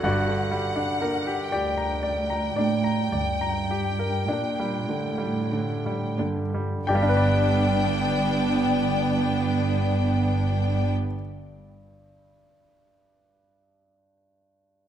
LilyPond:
<<
  \new Staff \with { instrumentName = "Violin section" } { \time 12/8 \key c \dorian \tempo 4. = 30 fis''4. g''1 r8 | g''1. | }
  \new Staff \with { instrumentName = "Violin section" } { \time 12/8 \key c \dorian r4 d''8 r4 d''8 r4 d''8 r4 d''8 | d''1. | }
  \new Staff \with { instrumentName = "Grand piano" } { \time 12/8 \key c \dorian << { <fis' d'' fis''>4. <g' g''>1 r8 | <g, g d' g' b' d'' g''>1. | } \\ { g,16 d16 g16 d'16 bes'16 g'16 d''16 bes''16 d''16 bes''16 d''16 bes''16 d''16 bes''16 g'16 bes'16 d'16 g16 d16 g16 d16 g16 d16 g16 | r1. | } >> }
  \new Staff \with { instrumentName = "Viola section" } { \time 12/8 \key c \dorian r4 <bes d'>8 r4 <bes d'>8 r4 <bes d'>8 r4 <bes d'>8 | <b d'>1. | }
  \new Staff \with { instrumentName = "Cello section" } { \clef bass \time 12/8 \key c \dorian g,4. d,4 a,8 g,4 bes,8 a,4 g,8 | g,1. | }
  \new Staff \with { instrumentName = "Double bass section" } { \clef bass \time 12/8 \key c \dorian g,,4. r4. d,4. r4. | g,,1. | }
>>